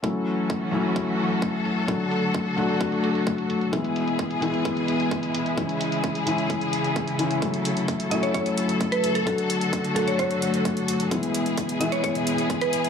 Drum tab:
HH |-xxx-xxx-xxx-xxx|xxxxxxxxxxxxxxxx|xxxxxxxxxxxxxxxx|xxxxxxxxxxxxxxxx|
BD |o---o---o---o---|o---o---o---o---|o---o---o---o---|o---o---o---o---|

HH |xxxxxxxxxxxxxxxx|xxxxxxxxxxxxxxxx|xxxxxxxxxxxxxxxx|
BD |o---o---o---o---|o---o---o---o---|o---o---o---o---|